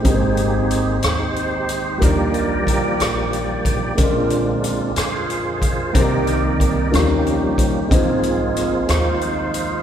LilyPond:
<<
  \new Staff \with { instrumentName = "Tonewheel organ" } { \time 6/8 \key ees \major \tempo 4. = 61 <ees' aes'>4. <ees' g' c''>4. | <bes g' bes'>4. <bes g'>4. | <d' f'>4. <f' aes' c''>4. | <ees' g' bes'>4. <bes g'>4. |
<c' f' aes'>4. <ees' f' c''>4. | }
  \new Staff \with { instrumentName = "Tonewheel organ" } { \time 6/8 \key ees \major <bes c' g'>4. r4. | <f g d''>2. | <d aes c'>4. r4. | <ees bes d''>4. <f g des'>4. |
<f bes>4. <f bes c'>8 r4 | }
  \new Staff \with { instrumentName = "Upright piano" } { \time 6/8 \key ees \major <aes c' ees' g' bes' c''>2. | <g bes d' ees' bes'>2. | <aes bes des' d' f' bes'>2. | <g bes c' ees' bes'>4. <f g bes des' ees' bes'>4. |
<aes c' ees' f' c''>2. | }
  \new Staff \with { instrumentName = "Upright piano" } { \clef bass \time 6/8 \key ees \major aes,4. r4. | ees4. r4. | bes,4. r4. | c4. ees4. |
aes,4. r4. | }
  \new Staff \with { instrumentName = "Upright bass" } { \clef bass \time 6/8 \key ees \major aes,,4. ees,4. | ees,4. bes,,4. | bes,,4. f,4. | c,4. ees,4. |
aes,,4. ees,4. | }
  \new DrumStaff \with { instrumentName = "Drums" } \drummode { \time 6/8 <hh bd>8 hh8 hh8 <hh ss>8 hh8 hh8 | <hh bd>8 hh8 <hh bd>8 <hh ss>8 hh8 <hh bd>8 | <hh bd>8 hh8 hh8 <hh ss>8 hh8 <hh bd>8 | <hh bd>8 hh8 <hh bd>8 <hh ss>8 hh8 <hh bd>8 |
<hh bd>8 hh8 <hh ss>8 <hh ss>8 hh8 hh8 | }
>>